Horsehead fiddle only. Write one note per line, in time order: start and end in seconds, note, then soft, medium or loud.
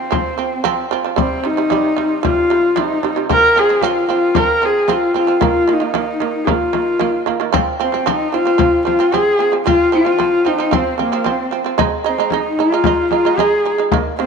0.00 0.88 C4 medium
1.19 1.47 C4 medium
1.45 2.24 D#4 medium
2.25 2.80 F4 medium
2.78 3.17 D#4 medium
3.33 3.60 A#4 loud
3.59 3.85 G#4 medium
3.83 4.10 F4 medium
4.10 4.39 F4 medium
4.37 4.66 A#4 loud
4.65 4.93 G#4 medium
4.92 5.17 F4 medium
5.18 5.41 F4 medium
5.45 5.74 F4 medium
5.73 5.97 D#4 medium
5.98 6.46 D#4 medium
6.45 6.52 G#4 medium
6.51 7.29 F4 medium
7.81 8.08 C4 medium
8.07 8.36 D#4 medium
8.34 8.85 F4 medium
8.86 9.16 F4 medium
9.15 9.54 G#4 medium
9.66 9.91 F4 loud
9.94 10.49 F4 loud
10.47 10.76 D#4 medium
10.75 11.00 C4 medium
11.02 11.32 A#3 medium
11.31 11.68 C4 medium
12.06 12.33 C4 medium
12.31 12.60 D#4 medium
12.59 13.11 F4 loud
13.12 13.39 F4 medium
13.38 13.78 G#4 medium
14.18 14.26 C4 medium